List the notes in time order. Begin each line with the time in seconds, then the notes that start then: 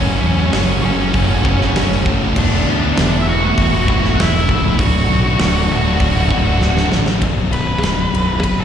Already playing: F#1 F#2 C#3 F#3 A3 C#4 F#4 C#5
0.21 E2 F#3 A3 C#4 F#4
0.36 F#3 A3 C#4 F#4
0.52 F#1 F#2 C#3 F#3 A3 C#4 F#4, snare, open hi-hat
0.83 F#1 F#3 A3 C#4 F#4 C#5
0.98 F#3 A3 C#4 F#4
1.14 F#1, kick, open hi-hat
1.29 F#3 A3 C#4 F#4
1.45 F#1 F#3 A3 C#4 F#4, kick
1.59 F#3 A3 C#4 F#4, snare
1.74 F#1 F#2 C#3 F#3 A3 C#4 F#4, snare, open hi-hat
1.89 F#2 C#3 F#3 A3 C#4 F#4, snare
2.05 F#1 F#3 A3 C#4 F#4, kick
2.21 F#3 A3 C#4 F#4
2.36 E1 E2 B2 E3 A3 B3 D4 E4 D5, kick, crash
2.66 D2 E3 A3 B3 E4
2.82 E3 A3 B3 E4
2.96 E1 E2 B2 E3 A3 B3 E4, snare, open hi-hat
3.21 E3 E5
3.26 A3 B3 E4 F#4 F#5
3.42 E3 A3 B3 E4
3.58 E1, kick, open hi-hat
3.71 E3 A3 B3 E4
3.86 E1 E3 A3 B3 E4, kick
4.03 E3 A3 B3 E4, snare
4.17 E1 E2 B2 E3 A3 B3 E4, snare, open hi-hat
4.22 E4 E5
4.32 E2 B2 E3 A3 B3 E4, snare
4.47 C#1 E3 A3 B3 E4, kick
4.62 E3 A3 B3 E4
4.78 D1 D2 A2 D3 F#3 A3 D4 F#4 F#5, kick, open hi-hat
5.09 B1 D3 F#3 A3 D4
5.24 D3 F#3 A3 D4
5.39 D1 D2 A2 D3 F#3 A3 D4, snare, open hi-hat
5.70 D1 D3 F#3 A3 D4
5.84 D3 F#3 A3 D4
6.00 D1, kick, open hi-hat
6.15 D3 F#3 A3 D4
6.29 D1 D3 F#3 A3 D4, kick
6.44 D3 F#3 A3 D4
6.60 D1 D2 A2 D3 F#3 A3 D4, snare
6.74 D2 A2 D3 F#3 A3 D4, snare
6.89 A1 D3 F#3 A3 D4, snare
7.05 D3 F#3 A3 D4, snare
7.20 B0 B1 F#2 B2 F#3 D4, kick, ride
7.52 B0 F#2 B4, ride
7.83 D1 F#2, snare, ride
8.13 B0 F#3, ride
8.43 F#1 B2 B4, kick, ride
8.60 A4